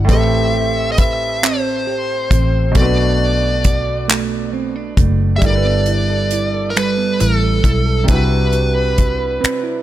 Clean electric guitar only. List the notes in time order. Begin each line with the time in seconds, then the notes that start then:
Already playing: E4 F#4
0.09 A3 B4
0.53 G4
0.97 B4
1.43 C4
1.87 G4
2.32 C4
2.76 B2 F#4
3.20 D4
3.64 F#4
4.08 A3
4.53 C4
4.76 D4
4.98 A3
5.42 G3 A4
5.65 B3
5.87 E4
6.10 A4
6.33 E4
6.54 A4
6.76 G3 A4
6.97 B3
7.20 E4
7.42 A4
7.64 E4
7.86 A4
8.08 C4 B4
8.31 E4
8.53 F#4
8.75 B4
8.97 F#4
9.19 B4
9.41 C4 B4
9.63 E4